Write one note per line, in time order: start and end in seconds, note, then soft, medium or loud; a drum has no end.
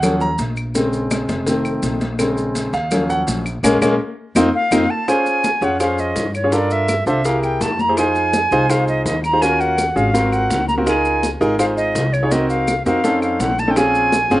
0.00 0.35 D#2 medium
0.00 0.27 F3 medium
0.00 0.27 F#3 medium
0.00 0.27 C#4 medium
0.00 0.19 F#5 medium
0.00 cowbell loud
0.00 high conga soft
0.00 low conga medium
0.00 claves medium
0.00 maracas medium
0.20 0.39 A#5 loud
0.20 high conga soft
0.20 maracas soft
0.38 1.23 A#1 loud
0.38 cowbell medium
0.38 high conga medium
0.38 maracas medium
0.57 claves medium
0.57 maracas soft
0.75 1.43 C#3 medium
0.75 1.44 G#3 medium
0.75 1.44 C4 medium
0.75 cowbell loud
0.75 high conga soft
0.75 maracas medium
0.93 high conga soft
0.93 maracas soft
1.11 cowbell medium
1.11 high conga loud
1.11 claves medium
1.11 maracas medium
1.29 1.79 F1 medium
1.29 cowbell medium
1.29 high conga medium
1.29 maracas soft
1.46 1.98 D#3 medium
1.46 1.99 A3 medium
1.46 1.99 C4 medium
1.46 cowbell loud
1.46 high conga soft
1.46 maracas medium
1.65 high conga soft
1.65 claves medium
1.65 maracas soft
1.83 2.67 A#1 loud
1.83 cowbell medium
1.83 high conga medium
1.83 maracas medium
2.01 cowbell medium
2.01 high conga medium
2.01 maracas soft
2.19 2.70 C#3 medium
2.19 2.71 G#3 medium
2.19 2.71 C4 medium
2.19 cowbell loud
2.19 claves medium
2.19 maracas medium
2.37 high conga soft
2.37 maracas soft
2.55 cowbell medium
2.55 high conga medium
2.55 maracas medium
2.73 3.23 D#2 loud
2.73 3.07 F5 medium
2.73 cowbell medium
2.73 high conga soft
2.73 maracas soft
2.91 3.43 F3 medium
2.91 3.43 F#3 medium
2.91 3.43 C#4 medium
2.91 cowbell loud
2.91 high conga soft
2.91 low conga medium
2.91 claves medium
2.91 maracas medium
3.10 3.21 F#5 medium
3.10 maracas soft
3.27 3.61 A#1 loud
3.27 cowbell medium
3.27 high conga medium
3.27 maracas medium
3.46 claves medium
3.46 maracas soft
3.63 3.77 A#1 medium
3.63 3.75 G#3 loud
3.63 3.75 A#3 loud
3.63 3.75 C#4 loud
3.63 cowbell medium
3.63 high conga loud
3.63 claves loud
3.63 maracas loud
3.81 3.95 A#1 loud
3.81 3.93 G#3 medium
3.81 3.93 A#3 loud
3.81 3.93 C#4 medium
3.81 cowbell loud
3.81 high conga loud
3.81 claves loud
3.81 maracas loud
4.35 4.49 F2 medium
4.35 4.47 C4 medium
4.35 4.48 D#4 loud
4.35 4.48 F4 medium
4.35 cowbell loud
4.35 high conga loud
4.35 claves medium
4.35 maracas loud
4.55 4.92 F5 medium
4.71 4.85 F2 loud
4.71 4.83 C4 medium
4.71 4.83 D#4 loud
4.71 4.83 F4 loud
4.71 cowbell loud
4.71 high conga loud
4.71 claves medium
4.71 maracas loud
4.90 5.10 A5 loud
5.08 5.46 C#4 medium
5.08 5.46 F4 medium
5.08 5.46 G#4 medium
5.08 5.46 C5 medium
5.08 5.65 G#5 medium
5.08 high bongo medium
5.08 high conga soft
5.08 claves medium
5.08 maracas medium
5.26 high conga soft
5.26 maracas soft
5.44 high bongo medium
5.44 high conga medium
5.44 maracas medium
5.61 6.12 F2 medium
5.61 5.75 C#4 medium
5.61 5.75 F4 medium
5.61 5.75 G#4 medium
5.61 5.75 C#5 medium
5.61 5.81 F#5 medium
5.61 maracas soft
5.80 6.24 C#4 medium
5.80 6.24 F4 medium
5.80 6.24 G#4 medium
5.80 6.25 C5 medium
5.80 6.01 F5 medium
5.80 high bongo medium
5.80 high conga soft
5.80 claves medium
5.80 maracas medium
5.98 6.34 D#5 medium
5.98 high conga soft
5.98 maracas soft
6.16 7.01 G2 medium
6.16 high bongo medium
6.16 low bongo medium
6.16 high conga soft
6.16 maracas medium
6.35 6.52 C#5 medium
6.35 high conga soft
6.35 claves medium
6.35 maracas soft
6.44 6.50 C#4 medium
6.44 6.50 F4 medium
6.44 6.50 G#4 medium
6.44 6.50 C#5 medium
6.52 6.91 D4 medium
6.52 6.91 F4 medium
6.52 6.91 A4 medium
6.52 6.91 A#4 medium
6.52 6.73 D5 loud
6.52 high bongo medium
6.52 high conga soft
6.52 maracas medium
6.70 7.07 E5 medium
6.70 high bongo soft
6.70 high conga soft
6.70 maracas soft
6.88 high bongo medium
6.88 high conga medium
6.88 claves medium
6.88 maracas medium
7.06 7.57 C2 medium
7.06 7.19 D4 medium
7.06 7.19 F4 medium
7.06 7.19 A4 medium
7.06 7.20 C5 medium
7.06 7.27 E5 medium
7.06 high conga soft
7.06 maracas soft
7.25 7.69 E4 medium
7.25 7.69 G4 medium
7.25 7.70 G#4 medium
7.25 7.69 A#4 medium
7.25 7.43 F5 medium
7.25 high bongo medium
7.25 high conga soft
7.25 maracas medium
7.43 7.63 G5 medium
7.43 high bongo soft
7.43 high conga soft
7.43 claves medium
7.43 maracas soft
7.61 8.45 F2 medium
7.61 7.82 A5 medium
7.61 high bongo medium
7.61 low bongo medium
7.61 high conga medium
7.61 maracas medium
7.79 7.97 A#5 loud
7.79 high bongo soft
7.79 high conga medium
7.79 maracas soft
7.89 7.95 E4 medium
7.89 7.95 G4 medium
7.89 7.95 G#4 medium
7.89 7.95 C5 medium
7.97 8.36 D#4 medium
7.97 8.36 F4 medium
7.97 8.36 G#4 medium
7.97 8.36 C5 medium
7.97 8.72 G#5 loud
7.97 high bongo medium
7.97 claves medium
7.97 maracas medium
8.15 high conga soft
8.15 maracas soft
8.33 high bongo medium
8.33 high conga medium
8.33 maracas medium
8.51 9.02 C2 medium
8.51 8.65 D#4 medium
8.51 8.65 F4 medium
8.51 8.65 G#4 medium
8.51 8.65 C5 loud
8.51 maracas soft
8.70 9.14 D#4 medium
8.70 9.14 F4 medium
8.70 9.14 G#4 medium
8.70 9.14 C5 medium
8.70 8.87 F5 medium
8.70 high bongo medium
8.70 high conga soft
8.70 claves medium
8.70 maracas medium
8.88 9.05 D#5 medium
8.88 high conga soft
8.88 maracas soft
9.05 9.90 D#2 medium
9.05 9.22 D#5 medium
9.05 high bongo medium
9.05 low bongo medium
9.05 high conga soft
9.05 maracas medium
9.24 9.43 A#5 loud
9.24 high conga soft
9.24 claves medium
9.24 maracas soft
9.33 9.39 D#4 medium
9.33 9.39 F4 medium
9.33 9.39 G#4 medium
9.33 9.39 C5 medium
9.41 9.80 C#4 medium
9.41 9.80 F4 medium
9.41 9.80 F#4 medium
9.41 9.80 A#4 medium
9.41 9.62 G#5 loud
9.41 high bongo medium
9.41 high conga soft
9.41 maracas medium
9.60 9.98 F#5 medium
9.60 high bongo soft
9.60 high conga soft
9.60 maracas soft
9.78 high bongo medium
9.78 high conga medium
9.78 claves medium
9.78 maracas medium
9.96 10.47 G#1 medium
9.96 10.09 C#4 medium
9.96 10.09 F4 medium
9.96 10.09 F#4 medium
9.96 10.09 G#4 medium
9.96 10.34 F5 medium
9.96 high conga soft
9.96 maracas soft
10.14 10.59 C4 medium
10.14 10.58 F4 medium
10.14 10.59 F#4 medium
10.14 10.59 A#4 medium
10.14 high bongo medium
10.14 high conga soft
10.14 maracas medium
10.32 10.67 F#5 medium
10.32 high bongo soft
10.32 high conga soft
10.32 claves medium
10.32 maracas soft
10.50 11.35 C#2 medium
10.50 high bongo medium
10.50 low bongo medium
10.50 high conga medium
10.50 maracas medium
10.68 10.74 A#5 medium
10.68 high bongo soft
10.68 high conga medium
10.68 maracas soft
10.78 10.84 C4 medium
10.78 10.84 F4 medium
10.78 10.84 F#4 medium
10.78 10.84 A#4 medium
10.86 11.25 D#4 medium
10.86 11.25 F4 medium
10.86 11.25 G#4 medium
10.86 11.25 A#4 medium
10.86 11.29 G#5 medium
10.86 high bongo medium
10.86 claves medium
10.86 maracas medium
11.05 high conga soft
11.05 maracas soft
11.23 high bongo medium
11.23 high conga medium
11.23 maracas medium
11.40 11.91 G#1 medium
11.40 11.54 D#4 medium
11.40 11.54 F4 medium
11.40 11.54 G#4 medium
11.40 11.54 A#4 loud
11.40 maracas soft
11.59 12.04 D#4 medium
11.59 12.04 F4 medium
11.59 12.04 G#4 medium
11.59 12.04 C5 medium
11.59 11.65 F5 medium
11.59 high bongo medium
11.59 high conga soft
11.59 claves medium
11.59 maracas medium
11.77 12.14 D#5 medium
11.77 high conga soft
11.77 maracas soft
11.95 12.80 C2 medium
11.95 high bongo medium
11.95 low bongo medium
11.95 high conga soft
11.95 maracas medium
12.13 12.33 C#5 medium
12.13 high conga soft
12.13 claves medium
12.13 maracas soft
12.23 12.29 D#4 medium
12.23 12.29 F4 medium
12.23 12.29 G#4 medium
12.23 12.29 C#5 medium
12.31 12.70 C4 medium
12.31 12.70 D#4 medium
12.31 12.70 F#4 medium
12.31 12.70 A#4 medium
12.31 12.48 D#5 medium
12.31 high bongo medium
12.31 high conga soft
12.31 maracas medium
12.49 12.83 F5 medium
12.49 high bongo soft
12.49 high conga soft
12.49 maracas soft
12.68 high bongo medium
12.68 high conga medium
12.68 claves medium
12.68 maracas medium
12.86 13.36 F2 medium
12.86 12.99 C4 medium
12.86 12.99 D#4 medium
12.86 12.99 F#4 medium
12.86 12.99 A#4 medium
12.86 13.20 F5 medium
12.86 high conga soft
12.86 maracas soft
13.04 13.49 C4 medium
13.04 13.49 C#4 medium
13.04 13.49 D#4 medium
13.04 13.49 A4 medium
13.04 high bongo medium
13.04 high conga soft
13.04 maracas medium
13.22 13.42 F5 medium
13.22 high bongo soft
13.22 high conga soft
13.22 claves medium
13.22 maracas soft
13.39 14.25 A#1 medium
13.39 13.61 F#5 medium
13.39 high bongo medium
13.39 low bongo medium
13.39 high conga medium
13.39 maracas medium
13.58 13.72 A5 medium
13.58 high bongo soft
13.58 high conga medium
13.58 maracas soft
13.68 13.74 C4 medium
13.68 13.74 C#4 medium
13.68 13.74 D#4 medium
13.68 13.74 A4 medium
13.68 13.79 G5 medium
13.76 14.15 C4 medium
13.76 14.15 C#4 medium
13.76 14.15 F4 medium
13.76 14.15 G#4 medium
13.76 14.40 G#5 loud
13.76 high bongo medium
13.76 claves medium
13.76 maracas medium
13.95 high conga soft
13.95 maracas soft
14.12 high bongo medium
14.12 high conga medium
14.12 maracas medium
14.30 14.40 G1 medium
14.30 14.40 C4 loud
14.30 14.40 C#4 medium
14.30 14.40 F4 medium
14.30 14.40 G#4 loud
14.30 maracas soft